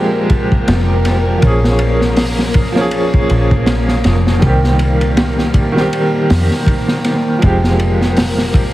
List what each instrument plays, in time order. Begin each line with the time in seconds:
Already playing: fingered electric bass F1, upright piano F3 G#3 C4 G4, string machine A#3 A#4
0.30 kick, ride
0.52 kick
0.68 fingered electric bass F1, snare, ride
1.05 snare, ride
1.38 upright piano F3 A#3
1.42 fingered electric bass A#1, upright piano C#4, kick, ride
1.47 upright piano G#4
1.64 snare
1.79 ride
2.01 snare
2.16 snare, open hi-hat
2.39 snare
2.54 kick, ride
2.72 upright piano F3 A#3, snare
2.77 upright piano C#4 G#4
2.91 ride
3.14 kick
3.30 fingered electric bass A#1, ride
3.51 kick
3.66 snare, ride
3.88 snare
4.04 fingered electric bass F1, snare, ride
4.27 snare
4.39 fingered electric bass C2, upright piano D#3 G3, kick, ride
4.45 upright piano C4 G4
4.64 snare
4.79 ride
5.01 ride
5.17 snare, ride
5.39 snare
5.54 kick, ride
5.72 upright piano D#3 G3
5.77 upright piano C4 G4, snare
5.93 ride
6.30 fingered electric bass F2, snare, open hi-hat
6.51 snare
6.67 kick, ride
6.88 snare
7.05 snare, ride
7.38 upright piano F3 G#3, ride
7.43 fingered electric bass F1, string machine A#3 A#4, upright piano C4 G4, kick
7.64 snare
7.79 ride
8.01 snare
8.17 snare, open hi-hat
8.38 snare
8.54 kick, ride